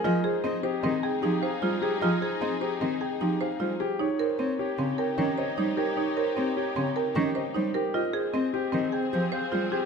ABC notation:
X:1
M:5/4
L:1/8
Q:1/4=152
K:Fm
V:1 name="Grand piano"
e c e G e g G f c G | e c e G e g G f c G | d c d G d g G e c G | d c d G d g G e c G |
e c e G e g G f c G |]
V:2 name="Clarinet"
A A A A A A A A A A | A A A A A A A A A z | d d d d d d d d d d | d d d d d d d d d z |
c c c c c c c c c c |]
V:3 name="Marimba"
F A C c C A E c F A | F A C c C A E c F A | E B C z C B D c E B | E B C z C B D c E B |
F A C z C A z c F A |]
V:4 name="String section"
[EA]8- [EA]2- | [EA]8- [EA] z | [EG]8- [EG]2- | [EG]8- [EG] z |
[CA]8- [CA]2 |]
V:5 name="Cello" clef=bass
F, z C z E, z F, z G, z | F, z C z E, z F, z G, z | z2 C z D, z E, z G, z | z2 C z D, z E, z G, z |
z2 C z E, z F, z G, z |]